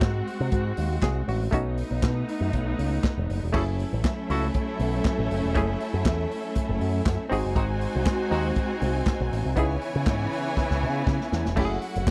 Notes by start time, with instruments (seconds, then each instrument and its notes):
Already playing: clav G#3 C4 D#4, string section G#3 C4 F#4
0.01 picked electric bass G#2, kick, snare, clap, closed hi-hat
0.27 open hi-hat
0.40 picked electric bass C3
0.51 picked electric bass G#2, kick, closed hi-hat
0.77 picked electric bass D#2, open hi-hat
1.02 picked electric bass C2, clav G#4, kick, snare, clap, closed hi-hat
1.28 picked electric bass A1, clav F#4, open hi-hat
1.51 picked electric bass B1, clav A3 C#4 D#4 F#4, string section A3 B3 D#4, kick, closed hi-hat
1.77 open hi-hat
1.91 picked electric bass B1
2.03 picked electric bass B2, kick, snare, clap, closed hi-hat
2.28 open hi-hat
2.41 picked electric bass F#2
2.53 picked electric bass B1, kick, closed hi-hat
2.79 picked electric bass C#2, open hi-hat
3.03 kick, snare, clap, closed hi-hat
3.17 picked electric bass E1
3.29 picked electric bass F#1, open hi-hat
3.43 picked electric bass E1
3.53 picked electric bass F#1, string section F#3 A3 E4, clav A3 C#4 E4 G#4, violin section C#4 A4 E5, horn section E4 F#4 A4, kick, crash
3.79 open hi-hat
3.93 picked electric bass A1
4.04 kick, snare, clap, closed hi-hat
4.29 picked electric bass C#2, horn section E4 F#4 A4, open hi-hat
4.54 kick, closed hi-hat
4.79 picked electric bass B1, open hi-hat
5.05 kick, snare, clap, closed hi-hat
5.19 picked electric bass A1
5.31 picked electric bass F#1, open hi-hat
5.44 picked electric bass E1
5.54 picked electric bass F#1, clav A3 C#4 E4 G#4, kick, closed hi-hat
5.80 open hi-hat
5.94 picked electric bass F#2
6.05 picked electric bass E2, kick, snare, clap, closed hi-hat
6.31 open hi-hat
6.55 kick, closed hi-hat
6.69 picked electric bass F#1
6.81 picked electric bass F#2, open hi-hat
7.06 picked electric bass F#2, kick, snare, clap, closed hi-hat
7.30 picked electric bass G#1, string section G#3 C4 F#4, clav C4 D#4 F#4 G#4, violin section D#4 C5 G#5, open hi-hat
7.45 picked electric bass F#1
7.55 picked electric bass G#1, horn section C4 D#4 F#4, kick, closed hi-hat
7.81 open hi-hat
7.95 picked electric bass C2
8.06 kick, snare, clap, closed hi-hat
8.31 picked electric bass D#2, horn section C4 D#4 F#4, open hi-hat
8.56 kick, closed hi-hat
8.81 picked electric bass C2, open hi-hat
9.06 kick, snare, clap, closed hi-hat
9.20 picked electric bass B1
9.32 picked electric bass A1, snare, open hi-hat
9.45 picked electric bass C2
9.56 picked electric bass C#2, string section C#3 E3 B3, clav B3 D#4 E4 G#4, violin section E4 C#5 G#5, kick, closed hi-hat
9.81 open hi-hat
9.95 picked electric bass C#3
10.06 picked electric bass G#2, kick, snare, clap, closed hi-hat
10.32 open hi-hat
10.57 kick, snare
10.70 picked electric bass C#2, snare
10.83 picked electric bass C#3
11.07 picked electric bass C#3, kick, snare
11.21 snare
11.32 picked electric bass E2, snare
11.45 picked electric bass E1, snare
11.56 picked electric bass F#1, string section F#3 A3 E4, clav A3 C#4 E4 G4, violin section F#4 F#5, kick, crash
11.65 clav G#4
11.82 open hi-hat
11.95 picked electric bass F#1, closed hi-hat
12.07 kick, snare, clap, closed hi-hat